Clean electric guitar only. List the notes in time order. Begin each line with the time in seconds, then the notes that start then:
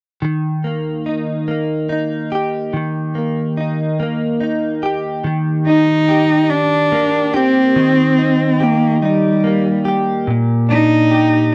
0.22 D#3
0.64 A#3
1.06 D#4
1.48 A#3
1.89 D#4
2.32 G4
2.73 D#3
3.15 A#3
3.57 D#4
4.00 A#3
4.41 D#4
4.83 G4
5.24 D#3
5.67 D#4
6.08 G4
6.92 A#3
7.34 G4
7.76 D#3
8.18 D#4
8.60 G4
9.02 D#4
9.44 A#3
9.85 G4
10.27 A#2
10.69 D4
11.11 G4